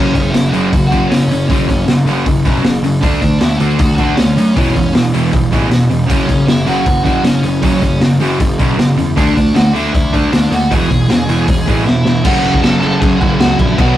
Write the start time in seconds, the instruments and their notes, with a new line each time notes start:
Already playing: picked electric bass F#1, overdriven electric guitar F#2 C#3 F#3, lead electric guitar C#4 C#5
0.15 picked electric bass F#1, overdriven electric guitar F#2 C#3, kick, open hi-hat
0.30 picked electric bass F#1, lead electric guitar E4 E5
0.34 overdriven electric guitar F#2 C#3, snare, open hi-hat
0.49 picked electric bass F#1, overdriven electric guitar F#2, lead electric guitar F#4 F#5
0.54 overdriven electric guitar C#3 F#3, open hi-hat
0.73 picked electric bass F#1, overdriven electric guitar F#2 C#3, kick, open hi-hat
0.87 lead electric guitar F#4 F#5
0.92 overdriven electric guitar F#2 C#3 F#3, kick, open hi-hat
1.08 picked electric bass F#1, lead electric guitar C#4 C#5
1.12 overdriven electric guitar F#2 C#3, snare, open hi-hat
1.28 picked electric bass F#1, overdriven electric guitar F#2 C#3, open hi-hat
1.48 picked electric bass F#1, overdriven electric guitar F#2 C#3 F#3, lead electric guitar C#4 C#5, kick, open hi-hat
1.68 picked electric bass F#1, overdriven electric guitar F#2 C#3, kick, open hi-hat
1.87 picked electric bass F#1, overdriven electric guitar F#2 C#3, snare, open hi-hat
2.06 picked electric bass F#1, overdriven electric guitar F#2 C#3 F#3, open hi-hat
2.26 picked electric bass F#1, overdriven electric guitar F#2 C#3, kick, open hi-hat
2.45 picked electric bass B1, overdriven electric guitar F#2 C#3 F#3, kick, open hi-hat
2.64 picked electric bass F#1, overdriven electric guitar F#2 C#3, snare, open hi-hat
2.83 picked electric bass F#1, overdriven electric guitar F#2 C#3, open hi-hat
3.01 picked electric bass D2, overdriven electric guitar D3, lead electric guitar D4 D5, kick, open hi-hat
3.05 overdriven electric guitar A3 D4
3.22 picked electric bass D2, overdriven electric guitar D3 A3, kick, open hi-hat
3.40 picked electric bass D2, overdriven electric guitar D3 A3, lead electric guitar E4 E5, snare, open hi-hat
3.56 picked electric bass D2, lead electric guitar F#4 F#5, open hi-hat
3.61 overdriven electric guitar D3 A3 D4
3.79 picked electric bass D2, overdriven electric guitar D3 A3, kick, open hi-hat
3.96 overdriven electric guitar D3, lead electric guitar F#4 F#5, kick, open hi-hat
4.00 overdriven electric guitar A3 D4
4.15 picked electric bass D2, overdriven electric guitar D3 A3, lead electric guitar C#4 C#5, snare, open hi-hat
4.37 picked electric bass F#2, overdriven electric guitar D3 A3, open hi-hat
4.56 picked electric bass E1, overdriven electric guitar E2 B2 E3, lead electric guitar C#4 C#5, kick, open hi-hat
4.76 picked electric bass E1, overdriven electric guitar E2 B2, kick, open hi-hat
4.95 picked electric bass E1, overdriven electric guitar E2 B2, snare, open hi-hat
5.13 picked electric bass E1, overdriven electric guitar E2 B2 E3, open hi-hat
5.33 picked electric bass E1, overdriven electric guitar E2 B2, kick, open hi-hat
5.52 picked electric bass A1, overdriven electric guitar E2 B2 E3, kick, open hi-hat
5.71 picked electric bass E1, overdriven electric guitar E2 B2, snare, open hi-hat
5.91 picked electric bass E1, overdriven electric guitar E2 B2, open hi-hat
6.09 picked electric bass F#1, overdriven electric guitar F#2 C#3 F#3, lead electric guitar C#4 C#5, kick, open hi-hat
6.28 picked electric bass F#1, overdriven electric guitar F#2 C#3, kick, open hi-hat
6.48 picked electric bass F#1, overdriven electric guitar F#2 C#3, lead electric guitar E4 E5, snare, open hi-hat
6.67 picked electric bass F#1, overdriven electric guitar F#2 C#3 F#3, lead electric guitar F#4 F#5, open hi-hat
6.86 picked electric bass F#1, overdriven electric guitar F#2 C#3, kick, open hi-hat
7.04 overdriven electric guitar F#2 C#3 F#3, lead electric guitar F#4 F#5, kick, open hi-hat
7.24 picked electric bass F#1, overdriven electric guitar F#2 C#3, lead electric guitar C#4 C#5, snare, open hi-hat
7.43 picked electric bass F#1, overdriven electric guitar F#2 C#3, open hi-hat
7.62 picked electric bass F#1, overdriven electric guitar F#2 C#3 F#3, lead electric guitar C#4 C#5, kick, open hi-hat
7.82 picked electric bass F#1, overdriven electric guitar F#2 C#3, kick, open hi-hat
8.00 picked electric bass F#1, overdriven electric guitar F#2 C#3, snare, open hi-hat
8.20 picked electric bass F#1, overdriven electric guitar F#2 C#3 F#3, open hi-hat
8.40 picked electric bass F#1, overdriven electric guitar F#2 C#3, kick, open hi-hat
8.59 picked electric bass B1, overdriven electric guitar F#2 C#3 F#3, kick, open hi-hat
8.77 picked electric bass F#1, overdriven electric guitar F#2 C#3, snare, open hi-hat
8.97 picked electric bass E2, overdriven electric guitar F#2 C#3, open hi-hat
9.16 picked electric bass D2, overdriven electric guitar D3 A3 D4, lead electric guitar D4 D5, kick, open hi-hat
9.36 picked electric bass D2, overdriven electric guitar D3 A3, kick, open hi-hat
9.54 picked electric bass D2, overdriven electric guitar D3 A3, lead electric guitar F#4 F#5, snare, open hi-hat
9.74 picked electric bass D2, overdriven electric guitar D3 A3 D4, lead electric guitar E4 E5, open hi-hat
9.93 picked electric bass D2, overdriven electric guitar D3 A3, kick, open hi-hat
10.12 overdriven electric guitar D3 A3 D4, lead electric guitar D4 D5, kick, open hi-hat
10.32 picked electric bass D2, overdriven electric guitar D3 A3, snare, open hi-hat
10.50 picked electric bass D#2, overdriven electric guitar D3 A3, lead electric guitar F#4 F#5, open hi-hat
10.70 picked electric bass E1, overdriven electric guitar E2 B2 E3, lead electric guitar G#4 G#5, kick, open hi-hat
10.90 picked electric bass E1, overdriven electric guitar E2 B2, kick, open hi-hat
11.09 picked electric bass E1, overdriven electric guitar E2 B2, snare, open hi-hat
11.28 picked electric bass E1, overdriven electric guitar E2 B2 E3, open hi-hat
11.48 picked electric bass E1, overdriven electric guitar E2 B2, kick, open hi-hat
11.66 picked electric bass A1, overdriven electric guitar E2 B2 E3, kick, open hi-hat
11.85 picked electric bass E1, overdriven electric guitar E2 B2, lead electric guitar E4 E5, snare
12.05 picked electric bass E1, overdriven electric guitar E2 B2, snare
12.23 picked electric bass F#1, overdriven electric guitar F#2 C#3, distorted electric guitar F#2 C#3 F#3 A3 C#4 F#4, lead electric guitar F#4 F#5, kick, crash
12.27 overdriven electric guitar F#3
12.43 picked electric bass F#1, crash
12.54 kick
12.63 picked electric bass F#1, lead electric guitar A4 A5, snare, crash
12.80 picked electric bass F#1, distorted electric guitar C#3 F#3 A3 C#4 F#4, lead electric guitar A4 A5, crash
12.84 distorted electric guitar F#2
13.00 picked electric bass F#2, lead electric guitar G#4 G#5, kick, crash
13.20 picked electric bass F#1, lead electric guitar F#4 F#5, kick, crash
13.39 picked electric bass C#2, lead electric guitar F#4 F#5, snare, crash
13.59 picked electric bass A#1, lead electric guitar E4 E5, kick, crash
13.76 picked electric bass B1, distorted electric guitar B2 F#3 B3 D4 F#4, overdriven electric guitar B2 F#3, lead electric guitar F#4 F#5, kick, crash
13.81 overdriven electric guitar B3